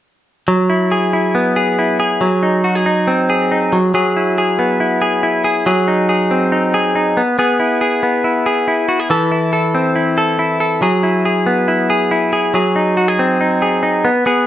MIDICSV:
0, 0, Header, 1, 2, 480
1, 0, Start_track
1, 0, Key_signature, 4, "major"
1, 0, Tempo, 430416
1, 540, Time_signature, 4, 2, 24, 8
1, 16134, End_track
2, 0, Start_track
2, 0, Title_t, "Clean electric guitar"
2, 0, Program_c, 0, 27
2, 534, Note_on_c, 0, 54, 66
2, 776, Note_on_c, 0, 64, 48
2, 1021, Note_on_c, 0, 68, 50
2, 1251, Note_off_c, 0, 64, 0
2, 1264, Note_on_c, 0, 64, 54
2, 1503, Note_on_c, 0, 59, 59
2, 1739, Note_off_c, 0, 68, 0
2, 1743, Note_on_c, 0, 68, 56
2, 1979, Note_off_c, 0, 64, 0
2, 1992, Note_on_c, 0, 64, 54
2, 2222, Note_off_c, 0, 68, 0
2, 2227, Note_on_c, 0, 68, 59
2, 2459, Note_off_c, 0, 54, 0
2, 2463, Note_on_c, 0, 54, 64
2, 2518, Note_off_c, 0, 59, 0
2, 2522, Note_off_c, 0, 64, 0
2, 2707, Note_on_c, 0, 63, 45
2, 2942, Note_off_c, 0, 68, 0
2, 2946, Note_on_c, 0, 66, 49
2, 3070, Note_off_c, 0, 66, 0
2, 3070, Note_on_c, 0, 68, 45
2, 3176, Note_off_c, 0, 63, 0
2, 3190, Note_on_c, 0, 63, 54
2, 3430, Note_on_c, 0, 60, 61
2, 3663, Note_off_c, 0, 68, 0
2, 3676, Note_on_c, 0, 68, 59
2, 3906, Note_off_c, 0, 63, 0
2, 3920, Note_on_c, 0, 63, 52
2, 4152, Note_off_c, 0, 54, 0
2, 4156, Note_on_c, 0, 54, 67
2, 4202, Note_off_c, 0, 60, 0
2, 4207, Note_off_c, 0, 63, 0
2, 4391, Note_off_c, 0, 54, 0
2, 4395, Note_on_c, 0, 54, 70
2, 4398, Note_off_c, 0, 68, 0
2, 4402, Note_on_c, 0, 68, 57
2, 4646, Note_on_c, 0, 64, 48
2, 4882, Note_off_c, 0, 68, 0
2, 4887, Note_on_c, 0, 68, 48
2, 5117, Note_on_c, 0, 59, 55
2, 5343, Note_off_c, 0, 64, 0
2, 5356, Note_on_c, 0, 64, 56
2, 5589, Note_off_c, 0, 68, 0
2, 5594, Note_on_c, 0, 68, 58
2, 5820, Note_off_c, 0, 64, 0
2, 5833, Note_on_c, 0, 64, 56
2, 6067, Note_off_c, 0, 68, 0
2, 6072, Note_on_c, 0, 68, 59
2, 6301, Note_off_c, 0, 54, 0
2, 6315, Note_on_c, 0, 54, 71
2, 6317, Note_off_c, 0, 68, 0
2, 6322, Note_on_c, 0, 68, 60
2, 6363, Note_off_c, 0, 64, 0
2, 6364, Note_off_c, 0, 59, 0
2, 6555, Note_on_c, 0, 63, 54
2, 6788, Note_off_c, 0, 68, 0
2, 6792, Note_on_c, 0, 68, 48
2, 7036, Note_on_c, 0, 60, 53
2, 7259, Note_off_c, 0, 63, 0
2, 7273, Note_on_c, 0, 63, 54
2, 7513, Note_off_c, 0, 68, 0
2, 7518, Note_on_c, 0, 68, 61
2, 7743, Note_off_c, 0, 63, 0
2, 7756, Note_on_c, 0, 63, 59
2, 7993, Note_off_c, 0, 60, 0
2, 7997, Note_on_c, 0, 59, 62
2, 8040, Note_off_c, 0, 54, 0
2, 8042, Note_off_c, 0, 63, 0
2, 8043, Note_off_c, 0, 68, 0
2, 8224, Note_off_c, 0, 59, 0
2, 8237, Note_on_c, 0, 59, 69
2, 8244, Note_on_c, 0, 68, 59
2, 8472, Note_on_c, 0, 64, 50
2, 8698, Note_off_c, 0, 68, 0
2, 8712, Note_on_c, 0, 68, 52
2, 8942, Note_off_c, 0, 59, 0
2, 8955, Note_on_c, 0, 59, 59
2, 9188, Note_off_c, 0, 64, 0
2, 9192, Note_on_c, 0, 64, 54
2, 9424, Note_off_c, 0, 68, 0
2, 9437, Note_on_c, 0, 68, 63
2, 9673, Note_off_c, 0, 64, 0
2, 9677, Note_on_c, 0, 64, 54
2, 9905, Note_off_c, 0, 68, 0
2, 9910, Note_on_c, 0, 66, 59
2, 10033, Note_off_c, 0, 66, 0
2, 10033, Note_on_c, 0, 68, 48
2, 10149, Note_on_c, 0, 52, 76
2, 10150, Note_off_c, 0, 68, 0
2, 10157, Note_on_c, 0, 69, 63
2, 10198, Note_off_c, 0, 59, 0
2, 10385, Note_off_c, 0, 64, 0
2, 10389, Note_on_c, 0, 64, 56
2, 10613, Note_off_c, 0, 69, 0
2, 10626, Note_on_c, 0, 69, 48
2, 10869, Note_on_c, 0, 60, 58
2, 11098, Note_off_c, 0, 64, 0
2, 11103, Note_on_c, 0, 64, 54
2, 11336, Note_off_c, 0, 69, 0
2, 11349, Note_on_c, 0, 69, 62
2, 11582, Note_off_c, 0, 64, 0
2, 11586, Note_on_c, 0, 64, 61
2, 11812, Note_off_c, 0, 69, 0
2, 11825, Note_on_c, 0, 69, 51
2, 12061, Note_off_c, 0, 52, 0
2, 12064, Note_off_c, 0, 69, 0
2, 12066, Note_on_c, 0, 54, 70
2, 12073, Note_on_c, 0, 68, 55
2, 12113, Note_off_c, 0, 60, 0
2, 12113, Note_off_c, 0, 64, 0
2, 12304, Note_on_c, 0, 64, 49
2, 12546, Note_off_c, 0, 68, 0
2, 12550, Note_on_c, 0, 68, 51
2, 12786, Note_on_c, 0, 59, 59
2, 13012, Note_off_c, 0, 64, 0
2, 13025, Note_on_c, 0, 64, 55
2, 13265, Note_off_c, 0, 68, 0
2, 13269, Note_on_c, 0, 68, 67
2, 13495, Note_off_c, 0, 64, 0
2, 13509, Note_on_c, 0, 64, 62
2, 13744, Note_off_c, 0, 68, 0
2, 13748, Note_on_c, 0, 68, 61
2, 13970, Note_off_c, 0, 54, 0
2, 13984, Note_on_c, 0, 54, 70
2, 13990, Note_off_c, 0, 68, 0
2, 13994, Note_on_c, 0, 68, 62
2, 14031, Note_off_c, 0, 59, 0
2, 14033, Note_off_c, 0, 64, 0
2, 14227, Note_on_c, 0, 63, 54
2, 14461, Note_off_c, 0, 68, 0
2, 14466, Note_on_c, 0, 66, 59
2, 14589, Note_off_c, 0, 66, 0
2, 14589, Note_on_c, 0, 68, 44
2, 14711, Note_on_c, 0, 60, 59
2, 14938, Note_off_c, 0, 63, 0
2, 14952, Note_on_c, 0, 63, 53
2, 15176, Note_off_c, 0, 68, 0
2, 15190, Note_on_c, 0, 68, 59
2, 15408, Note_off_c, 0, 63, 0
2, 15421, Note_on_c, 0, 63, 54
2, 15660, Note_off_c, 0, 60, 0
2, 15664, Note_on_c, 0, 59, 76
2, 15709, Note_off_c, 0, 63, 0
2, 15710, Note_off_c, 0, 54, 0
2, 15713, Note_off_c, 0, 68, 0
2, 15890, Note_off_c, 0, 59, 0
2, 15903, Note_on_c, 0, 59, 82
2, 15910, Note_on_c, 0, 68, 61
2, 16134, Note_off_c, 0, 59, 0
2, 16134, Note_off_c, 0, 68, 0
2, 16134, End_track
0, 0, End_of_file